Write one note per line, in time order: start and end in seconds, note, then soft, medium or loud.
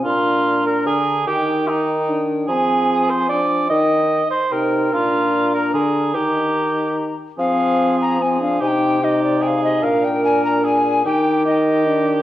0.04 0.88 A#2 medium
0.04 1.26 D4 medium
0.04 0.61 F4 medium
0.04 0.12 C6 medium
0.11 1.27 A#5 medium
0.66 0.86 A#4 medium
0.86 1.26 D3 medium
0.86 1.26 G#4 medium
1.27 2.46 D#3 medium
1.27 1.67 D#4 medium
1.27 1.69 G4 medium
1.27 1.67 G5 medium
1.68 2.10 D#4 medium
1.68 2.29 D#4 medium
1.68 2.50 G5 medium
1.68 1.72 G#5 medium
2.09 2.52 D4 medium
2.48 3.68 F3 medium
2.48 3.30 C4 medium
2.48 3.11 G#4 medium
2.48 2.54 A#5 medium
2.53 3.70 G#5 medium
3.10 3.28 C5 medium
3.29 3.70 D4 medium
3.29 3.69 D5 medium
3.70 4.23 D#3 medium
3.70 4.23 D#4 medium
3.70 4.30 D#5 loud
3.70 4.23 G5 medium
4.30 4.53 C5 medium
4.51 4.94 C3 medium
4.51 4.90 D#4 medium
4.51 4.95 A#4 medium
4.51 4.94 G5 medium
4.92 5.73 A#2 medium
4.92 6.13 D4 medium
4.92 5.53 F4 medium
4.92 6.14 A#5 medium
5.54 5.73 A#4 medium
5.74 6.16 D3 medium
5.74 6.16 G#4 medium
6.15 7.18 D#3 medium
6.15 7.17 D#4 medium
6.15 6.97 G4 medium
6.15 7.16 A#5 medium
7.38 8.57 F3 medium
7.38 8.17 C4 medium
7.38 8.16 G#4 medium
7.38 7.96 F5 loud
8.02 8.24 A#5 loud
8.20 8.40 C4 medium
8.20 8.63 G#4 medium
8.20 8.42 G#5 medium
8.41 8.63 D4 medium
8.41 8.62 F5 loud
8.61 9.81 C3 medium
8.61 9.01 D#4 medium
8.61 9.02 G4 medium
8.61 8.69 G#5 loud
8.68 9.05 G5 loud
9.02 9.85 D#4 medium
9.02 9.44 G4 medium
9.02 9.23 D#5 loud
9.24 9.44 D5 medium
9.42 9.84 G#4 medium
9.42 9.48 G5 medium
9.47 9.63 F5 medium
9.64 9.85 D#5 medium
9.83 11.03 A#2 medium
9.83 11.05 D4 medium
9.83 10.65 A#4 medium
9.83 10.06 F5 loud
10.05 10.24 G5 loud
10.24 10.44 G#5 loud
10.45 10.65 A#5 loud
10.64 11.05 G#4 medium
10.64 11.05 G#5 loud
11.05 12.22 D#3 medium
11.05 11.45 D#4 medium
11.05 11.43 G4 medium
11.05 11.45 G5 loud
11.44 11.86 D#4 medium
11.44 12.22 G4 medium
11.44 12.06 D#5 loud
11.87 12.22 D4 medium